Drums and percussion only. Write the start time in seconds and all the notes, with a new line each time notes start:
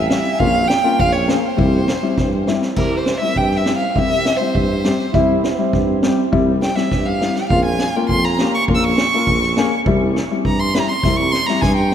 0.10 snare
0.40 kick
0.70 snare
0.99 kick
1.29 snare
1.58 kick
1.88 snare
2.17 kick, snare
2.47 snare
2.62 snare
2.76 kick, crash
3.06 snare
3.36 kick
3.51 snare
3.66 snare
3.96 kick
4.25 snare
4.55 kick
4.84 snare
4.99 snare
5.13 kick, snare
5.44 snare
5.73 kick, snare
6.03 snare
6.33 kick
6.62 snare
6.77 snare
6.91 kick, snare
7.21 snare
7.36 snare
7.50 kick
7.79 snare
8.09 kick
8.23 snare
8.38 snare
8.68 kick
8.98 snare
9.27 kick
9.42 snare
9.57 snare
9.86 kick
10.16 snare
10.45 kick
10.74 snare
11.03 kick, snare
11.33 snare
11.48 snare
11.62 kick, snare